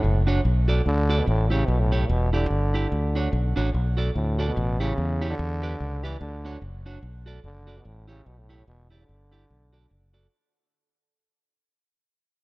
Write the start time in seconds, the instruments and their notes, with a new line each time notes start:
Already playing: trombone A2
0.03 fingered electric bass F#1, muted clean electric guitar stroke
0.27 clean electric guitar D4 F#4 C#5
0.45 fingered electric bass B1
0.68 clean electric guitar F#4 A4 D5
0.86 fingered electric bass D2, trombone D3
1.09 clean electric guitar F#4 A4 D5
1.19 trombone B2
1.26 fingered electric bass A1, trombone A2, muted clean electric guitar stroke
1.50 trombone C#3, clean electric guitar E4 G4 C#5
1.67 fingered electric bass B1, trombone B2
1.80 trombone A2
1.92 clean electric guitar E4 G4 C#5
2.09 fingered electric bass E1, trombone B2
2.33 trombone D3, clean electric guitar E4 G4 D5
2.50 fingered electric bass G1
2.74 clean electric guitar E4 G4 D5
2.92 fingered electric bass D2
3.15 clean electric guitar D4 F#4 C#5
3.32 fingered electric bass B1, muted clean electric guitar stroke
3.56 fingered electric bass A1, clean electric guitar D4 F#4 C#5
3.74 fingered electric bass B1
3.97 clean electric guitar F#4 A4 D5
4.15 fingered electric bass D2, trombone A2
4.39 clean electric guitar F#4 A4 D5
4.47 trombone B2
4.56 fingered electric bass A1, muted clean electric guitar stroke
4.80 trombone C#3, clean electric guitar E4 G4 C#5
4.98 fingered electric bass E2
5.21 clean electric guitar E4 G4 C#5
5.30 trombone D3
5.39 fingered electric bass E2
5.62 clean electric guitar G4 B4 D5
5.80 fingered electric bass C#2
6.03 trombone E3, clean electric guitar G4 B4 D5
6.21 fingered electric bass D2, trombone D3
6.45 clean electric guitar D4 F#4 C#5
6.62 fingered electric bass F#1, muted clean electric guitar stroke
6.86 clean electric guitar D4 F#4 C#5
7.02 fingered electric bass B1
7.26 clean electric guitar F#4 A4 D5
7.44 fingered electric bass F#1, trombone D3
7.67 clean electric guitar F#4 A4 D5
7.78 trombone B2
7.84 fingered electric bass A1, trombone A2, muted clean electric guitar stroke
8.08 trombone C#3, clean electric guitar E4 G4 C#5
8.26 fingered electric bass B1, trombone B2
8.38 trombone A2
8.49 clean electric guitar E4 G4 C#5
8.67 fingered electric bass E1, trombone B2
8.90 trombone D3, clean electric guitar E4 G4 D5
9.09 fingered electric bass G1
9.31 clean electric guitar E4 G4 D5
9.50 fingered electric bass B1
9.72 clean electric guitar F#4 A4 D5
9.90 fingered electric bass F#1, muted clean electric guitar stroke
10.13 clean electric guitar F#4 A4 D5